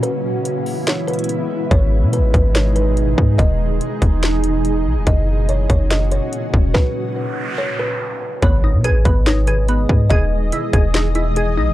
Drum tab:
HH |x-------x---o---x---xxxxx-------|x-------x---x---x---x---x-------|x-------x---x---x---x---x-------|x-------x---x---x---x---x-------|
SD |----------------o---------------|----------------o---------------|----------------o---------------|----------------o---------------|
BD |--------------------------------|o-----------o---------------o---|o-----------o-------------------|o-----------o---------------o---|

HH |--------------------------------|x-------x---x---x---x---x-------|x-------x---x---x---x---x-------|
SD |o-------------------------------|----------------o---------------|----------------o---------------|
BD |o-------------------------------|o-----------o---------------o---|o-----------o-------------------|